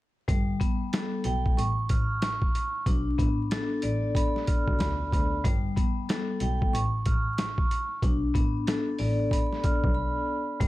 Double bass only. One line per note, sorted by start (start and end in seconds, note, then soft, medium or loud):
0.28 0.55 G1 loud
1.25 1.56 B1 medium
1.57 1.84 A1 loud
1.90 2.33 A1 medium
2.86 3.13 B1 loud
3.19 3.35 A1 medium
3.83 4.10 A1 medium
4.68 4.78 B1 medium
4.80 5.06 D2 loud
5.12 5.39 D2 medium
5.44 5.71 G1 loud
6.41 6.73 B1 medium
6.73 7.00 A1 loud
7.06 7.49 A1 medium
8.03 8.29 B1 loud
8.35 8.51 A1 medium
8.99 9.26 A1 medium
9.84 9.94 B1 medium
10.60 10.68 G1 loud